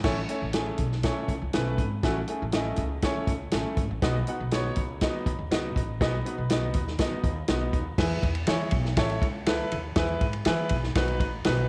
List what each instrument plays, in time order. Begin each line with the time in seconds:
0.04 upright bass A1, grand piano A3 C#4 E4 C#5, kick, snare, crash
0.29 grand piano A3 C#4 E4 C#5, closed hi-hat
0.42 upright bass A1
0.53 grand piano A3 C#4 E4 G#4, snare, closed hi-hat
0.78 upright bass B1, kick, closed hi-hat
0.92 snare
1.03 grand piano A3 C#4 E4 C#5, kick, snare, closed hi-hat
1.28 upright bass C#2, kick, closed hi-hat
1.42 upright bass C#2
1.53 upright bass B1, grand piano A3 C#4 E4 B4, snare, closed hi-hat
1.78 upright bass G#1, kick, closed hi-hat
2.03 upright bass A1, grand piano A3 C#4 E4 F#4, kick, snare, closed hi-hat
2.28 grand piano A3 C#4 E4 G#4, closed hi-hat
2.42 upright bass A1
2.52 grand piano A3 C#4 E4 D#5, snare, closed hi-hat
2.76 upright bass C#2, kick, closed hi-hat
3.02 grand piano A3 C#4 E4 C#5, kick, snare, closed hi-hat
3.16 muted upright bass stroke
3.27 upright bass C#2, kick, closed hi-hat
3.51 upright bass A1, grand piano A3 C#4 E4 A4, snare, closed hi-hat
3.77 upright bass G#1, kick, closed hi-hat
3.91 upright bass A1
4.02 upright bass B1, grand piano B3 D#4 F#4 D#5, kick, snare, closed hi-hat
4.27 grand piano B3 D#4 F#4 F#5, closed hi-hat
4.40 upright bass B1
4.51 grand piano B3 D#4 F#4 C#5, snare, closed hi-hat
4.76 upright bass C#2, kick, closed hi-hat
5.01 grand piano B3 D#4 F#4 D#5, kick, snare, closed hi-hat
5.26 upright bass D#2, kick, closed hi-hat
5.39 upright bass D#2
5.51 upright bass C#2, grand piano B3 D#4 F#4 D#5, snare, closed hi-hat
5.76 upright bass A1, kick, closed hi-hat
6.01 upright bass B1, grand piano B3 D#4 F#4 D#5, kick, snare, closed hi-hat
6.25 grand piano B3 D#4 F#4 B4, closed hi-hat
6.38 upright bass B1
6.50 grand piano B3 D#4 F#4 D#5, snare, closed hi-hat
6.74 upright bass D#2, kick, closed hi-hat
6.87 snare
6.99 grand piano B3 D#4 F#4 D#5, kick, snare, closed hi-hat
7.11 muted upright bass stroke
7.24 upright bass D#2, kick, closed hi-hat
7.48 upright bass B1, grand piano B3 D#4 F#4 D#5, snare, closed hi-hat
7.73 upright bass D#2, kick, closed hi-hat
7.98 upright bass E2, grand piano E4 G#4 B4, kick, snare, crash
8.23 upright bass E2, kick, ride
8.35 ride
8.47 upright bass E3, grand piano E4 G#4 C#5, snare, ride
8.71 upright bass B1, kick, ride
8.85 snare
8.97 upright bass A1, grand piano E4 A4 C#5, kick, snare, ride
9.10 ride
9.22 upright bass C#2, kick, ride
9.46 grand piano E4 A4 B4, snare, ride
9.72 upright bass D#2, ride
9.96 upright bass E2, grand piano E4 G#4 B4, kick, snare, ride
10.21 upright bass G#2, kick, ride
10.33 ride
10.45 upright bass E3, grand piano E4 G#4 B4, snare, ride
10.69 upright bass B1, kick, ride
10.83 snare
10.95 upright bass B1, grand piano D#4 F#4 B4, kick, snare, ride
11.08 ride
11.20 upright bass A1, kick, ride
11.45 upright bass B1, grand piano D#4 F#4 B4, snare, ride